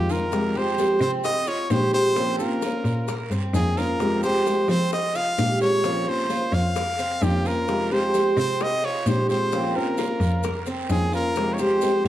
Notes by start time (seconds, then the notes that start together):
Already playing: F2 D#3 G#3 C4 F4 G4
0.09 F4 A#4, low bongo, short guiro, maracas
0.32 C3 F3 G#3 C4 G4, high bongo, long guiro, maracas
0.55 F3 G#3 C4 G4 C5
0.78 F3 G#3 C4 G4, high bongo, short guiro, maracas
1.01 C3 C4 C5, high bongo, short guiro, maracas
1.24 D#5, muted nylon-string guitar stroke, high bongo, long guiro, maracas
1.47 F4 C#5, high bongo, maracas
1.70 A#2 F3 G#3 C4 G4 C5, high bongo, low bongo, short guiro, maracas
1.93 F3 G#3 C4 G4 C5, high bongo, short guiro, maracas
2.16 F3 A#3 C4 C#4 F4 C5, high bongo, long guiro, maracas
2.39 A#3 C#4 F4 A#4 C5, maracas
2.62 A#3 C#4 F4 C5, high bongo, short guiro, maracas
2.85 A#2, high bongo, short guiro, maracas
3.08 A#4, muted nylon-string guitar stroke, high bongo, long guiro, maracas
3.30 G2 C4, high bongo, maracas
3.54 F2 A#3 C#4 F4 G#4 C5, high bongo, low bongo, short guiro, maracas
3.77 A#3 C#4 F4 A#4 C5, high bongo, short guiro, maracas
4.00 C3 F3 G#3 C4 G4, high bongo, long guiro, maracas
4.23 F3 G#3 C4 G4 C5, maracas
4.45 F3 G#3 C4 G4, high bongo, short guiro, maracas
4.68 F3 C4 C5, high bongo, short guiro, maracas
4.91 D#5, muted nylon-string guitar stroke, high bongo, long guiro, maracas
5.15 F4 F5, high bongo, maracas
5.38 A#2 F3 G#3 C4 G4, high bongo, low bongo, short guiro, maracas
5.60 F3 G#3 C4 G4 C#5, high bongo, short guiro, maracas
5.84 F3 A#3 C4 C#4 F4 C5, high bongo, long guiro, maracas
6.07 A#3 C#4 F4 C5
6.29 A#3 C#4 F4 C5, high bongo, short guiro, maracas
6.53 F2 F5, high bongo, short guiro, maracas
6.76 A#4, muted nylon-string guitar stroke, high bongo, long guiro, maracas
6.99 C4, high bongo, maracas
7.21 F2 A#3 C#4 F4 G4 C5, high bongo, low bongo, short guiro, maracas
7.45 A#3 C#4 F4 A#4 C5, high bongo, short guiro, maracas
7.68 C3 F3 G#3 C4 G4, high bongo, long guiro, maracas
7.91 F3 G#3 C4 G4 C5
8.14 F3 G#3 C4, high bongo, short guiro, maracas
8.37 C3 C4 C5, short guiro, maracas
8.60 D#5, muted nylon-string guitar stroke, high bongo, long guiro, maracas
8.84 F4 C#5, high bongo
9.06 A#2 F3 G#3 C4 G4 C5, high bongo, low bongo, short guiro, maracas
9.29 F3 G#3 C4 G4 C5, high bongo, short guiro, maracas
9.52 F3 A#3 C4 C#4 F4 C5, high bongo, long guiro, maracas
9.76 A#3 C#4 F4 A#4 C5
9.97 A#3 C#4 F4 C5, high bongo, short guiro, maracas
10.20 F2, high bongo, short guiro, maracas
10.43 A#4, muted nylon-string guitar stroke, high bongo, long guiro, maracas
10.66 C4, high bongo, maracas
10.89 F2 A#3 C#4 F4 G#4 C5, high bongo, low bongo, short guiro, maracas
11.12 A#3 C#4 F4 A#4 C5, high bongo, short guiro, maracas
11.35 C3 F3 G#3 C4 G4, high bongo, long guiro, maracas
11.54 C#5
11.58 F3 G#3 C4 G4 C5, maracas
11.81 F3 G#3 C4 G4, high bongo, short guiro, maracas
12.04 G#2, maracas